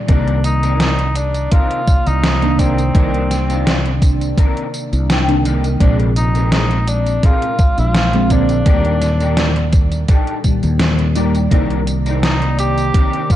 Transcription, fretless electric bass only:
0, 0, Header, 1, 2, 480
1, 0, Start_track
1, 0, Key_signature, -3, "minor"
1, 0, Tempo, 714286
1, 60, Time_signature, 4, 2, 24, 8
1, 8977, End_track
2, 0, Start_track
2, 0, Title_t, "Fretless electric bass"
2, 0, Program_c, 0, 35
2, 60, Note_on_c, 0, 36, 92
2, 986, Note_off_c, 0, 36, 0
2, 1390, Note_on_c, 0, 36, 100
2, 1948, Note_off_c, 0, 36, 0
2, 1980, Note_on_c, 0, 36, 95
2, 2906, Note_off_c, 0, 36, 0
2, 3310, Note_on_c, 0, 36, 95
2, 3868, Note_off_c, 0, 36, 0
2, 3902, Note_on_c, 0, 34, 99
2, 4827, Note_off_c, 0, 34, 0
2, 5227, Note_on_c, 0, 34, 103
2, 5786, Note_off_c, 0, 34, 0
2, 5820, Note_on_c, 0, 39, 97
2, 6746, Note_off_c, 0, 39, 0
2, 7146, Note_on_c, 0, 39, 95
2, 7706, Note_off_c, 0, 39, 0
2, 7738, Note_on_c, 0, 36, 103
2, 8665, Note_off_c, 0, 36, 0
2, 8977, End_track
0, 0, End_of_file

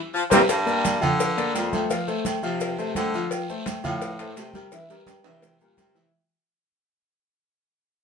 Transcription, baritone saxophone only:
0, 0, Header, 1, 2, 480
1, 0, Start_track
1, 0, Tempo, 352526
1, 670, Time_signature, 4, 2, 24, 8
1, 10938, End_track
2, 0, Start_track
2, 0, Title_t, "Baritone saxophone"
2, 0, Program_c, 0, 67
2, 423, Note_on_c, 0, 48, 104
2, 605, Note_off_c, 0, 48, 0
2, 677, Note_on_c, 0, 43, 104
2, 1343, Note_off_c, 0, 43, 0
2, 1396, Note_on_c, 0, 50, 95
2, 2062, Note_off_c, 0, 50, 0
2, 2116, Note_on_c, 0, 41, 85
2, 2536, Note_off_c, 0, 41, 0
2, 3316, Note_on_c, 0, 48, 91
2, 3759, Note_off_c, 0, 48, 0
2, 3795, Note_on_c, 0, 48, 79
2, 4015, Note_off_c, 0, 48, 0
2, 4042, Note_on_c, 0, 50, 87
2, 4459, Note_off_c, 0, 50, 0
2, 5230, Note_on_c, 0, 45, 96
2, 5899, Note_off_c, 0, 45, 0
2, 5945, Note_on_c, 0, 48, 89
2, 6371, Note_off_c, 0, 48, 0
2, 7147, Note_on_c, 0, 48, 90
2, 7594, Note_off_c, 0, 48, 0
2, 7628, Note_on_c, 0, 46, 74
2, 7851, Note_off_c, 0, 46, 0
2, 7870, Note_on_c, 0, 48, 91
2, 8293, Note_off_c, 0, 48, 0
2, 10938, End_track
0, 0, End_of_file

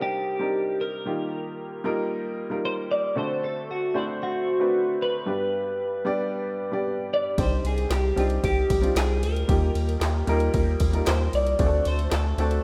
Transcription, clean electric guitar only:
0, 0, Header, 1, 2, 480
1, 0, Start_track
1, 0, Key_signature, -3, "minor"
1, 0, Tempo, 526778
1, 970, Time_signature, 4, 2, 24, 8
1, 11514, End_track
2, 0, Start_track
2, 0, Title_t, "Clean electric guitar"
2, 0, Program_c, 0, 27
2, 21, Note_on_c, 0, 67, 105
2, 739, Note_on_c, 0, 70, 112
2, 756, Note_off_c, 0, 67, 0
2, 2415, Note_off_c, 0, 70, 0
2, 2418, Note_on_c, 0, 72, 107
2, 2482, Note_off_c, 0, 72, 0
2, 2656, Note_on_c, 0, 74, 113
2, 2875, Note_off_c, 0, 74, 0
2, 2898, Note_on_c, 0, 72, 105
2, 3136, Note_on_c, 0, 69, 100
2, 3140, Note_off_c, 0, 72, 0
2, 3356, Note_off_c, 0, 69, 0
2, 3379, Note_on_c, 0, 66, 98
2, 3620, Note_off_c, 0, 66, 0
2, 3622, Note_on_c, 0, 64, 80
2, 3685, Note_off_c, 0, 64, 0
2, 3855, Note_on_c, 0, 66, 87
2, 4535, Note_off_c, 0, 66, 0
2, 4578, Note_on_c, 0, 71, 106
2, 6499, Note_off_c, 0, 71, 0
2, 6503, Note_on_c, 0, 74, 105
2, 6742, Note_off_c, 0, 74, 0
2, 6745, Note_on_c, 0, 72, 102
2, 6960, Note_off_c, 0, 72, 0
2, 6985, Note_on_c, 0, 68, 95
2, 7215, Note_off_c, 0, 68, 0
2, 7219, Note_on_c, 0, 67, 98
2, 7460, Note_off_c, 0, 67, 0
2, 7469, Note_on_c, 0, 65, 84
2, 7530, Note_off_c, 0, 65, 0
2, 7698, Note_on_c, 0, 67, 87
2, 8175, Note_off_c, 0, 67, 0
2, 8179, Note_on_c, 0, 68, 93
2, 8397, Note_off_c, 0, 68, 0
2, 8414, Note_on_c, 0, 70, 103
2, 10054, Note_off_c, 0, 70, 0
2, 10097, Note_on_c, 0, 72, 93
2, 10339, Note_off_c, 0, 72, 0
2, 10344, Note_on_c, 0, 74, 109
2, 10816, Note_off_c, 0, 74, 0
2, 10820, Note_on_c, 0, 72, 103
2, 11059, Note_off_c, 0, 72, 0
2, 11062, Note_on_c, 0, 69, 96
2, 11514, Note_off_c, 0, 69, 0
2, 11514, End_track
0, 0, End_of_file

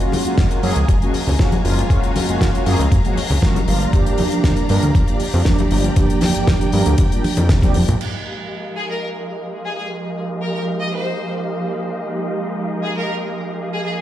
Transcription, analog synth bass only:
0, 0, Header, 1, 2, 480
1, 0, Start_track
1, 0, Tempo, 508475
1, 1795, Time_signature, 4, 2, 24, 8
1, 13230, End_track
2, 0, Start_track
2, 0, Title_t, "Analog synth bass"
2, 0, Program_c, 0, 38
2, 356, Note_on_c, 0, 30, 82
2, 445, Note_off_c, 0, 30, 0
2, 597, Note_on_c, 0, 42, 90
2, 685, Note_off_c, 0, 42, 0
2, 721, Note_on_c, 0, 37, 94
2, 802, Note_off_c, 0, 37, 0
2, 836, Note_on_c, 0, 30, 76
2, 925, Note_off_c, 0, 30, 0
2, 1200, Note_on_c, 0, 37, 95
2, 1282, Note_off_c, 0, 37, 0
2, 1554, Note_on_c, 0, 30, 94
2, 1730, Note_off_c, 0, 30, 0
2, 1793, Note_on_c, 0, 30, 99
2, 1884, Note_off_c, 0, 30, 0
2, 2161, Note_on_c, 0, 30, 43
2, 2252, Note_off_c, 0, 30, 0
2, 2272, Note_on_c, 0, 30, 79
2, 2363, Note_off_c, 0, 30, 0
2, 2512, Note_on_c, 0, 42, 89
2, 2603, Note_off_c, 0, 42, 0
2, 2636, Note_on_c, 0, 37, 93
2, 2720, Note_off_c, 0, 37, 0
2, 2753, Note_on_c, 0, 30, 79
2, 2844, Note_off_c, 0, 30, 0
2, 3116, Note_on_c, 0, 37, 96
2, 3200, Note_off_c, 0, 37, 0
2, 3470, Note_on_c, 0, 31, 95
2, 3648, Note_off_c, 0, 31, 0
2, 3711, Note_on_c, 0, 31, 100
2, 3803, Note_off_c, 0, 31, 0
2, 4191, Note_on_c, 0, 31, 81
2, 4283, Note_off_c, 0, 31, 0
2, 4434, Note_on_c, 0, 43, 92
2, 4524, Note_off_c, 0, 43, 0
2, 4559, Note_on_c, 0, 38, 92
2, 4642, Note_off_c, 0, 38, 0
2, 4672, Note_on_c, 0, 31, 78
2, 4763, Note_off_c, 0, 31, 0
2, 5038, Note_on_c, 0, 41, 96
2, 5121, Note_off_c, 0, 41, 0
2, 5393, Note_on_c, 0, 31, 92
2, 5569, Note_off_c, 0, 31, 0
2, 5632, Note_on_c, 0, 31, 98
2, 5723, Note_off_c, 0, 31, 0
2, 6001, Note_on_c, 0, 31, 42
2, 6092, Note_off_c, 0, 31, 0
2, 6112, Note_on_c, 0, 31, 84
2, 6203, Note_off_c, 0, 31, 0
2, 6354, Note_on_c, 0, 43, 90
2, 6444, Note_off_c, 0, 43, 0
2, 6477, Note_on_c, 0, 38, 90
2, 6561, Note_off_c, 0, 38, 0
2, 6593, Note_on_c, 0, 31, 80
2, 6684, Note_off_c, 0, 31, 0
2, 6960, Note_on_c, 0, 41, 96
2, 7072, Note_on_c, 0, 36, 95
2, 7086, Note_off_c, 0, 41, 0
2, 7313, Note_on_c, 0, 41, 84
2, 7328, Note_off_c, 0, 36, 0
2, 7404, Note_off_c, 0, 41, 0
2, 7439, Note_on_c, 0, 34, 95
2, 7521, Note_off_c, 0, 34, 0
2, 13230, End_track
0, 0, End_of_file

